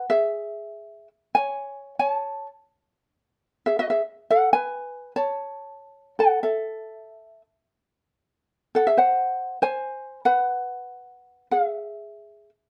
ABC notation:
X:1
M:4/4
L:1/16
Q:"Swing" 1/4=95
K:A
V:1 name="Ukulele"
[Ge]6 z2 [cg]4 [ca]3 z | [K:F#dor] z6 [Ge] [Fd] [Ge]2 [Af]2 [Bg]4 | [ca]6 [Af]2 [Ae]6 z2 | z6 [Af] [Ge] [^Bf]4 [Bg]4 |
[Bf]8 [Ge]6 z2 |]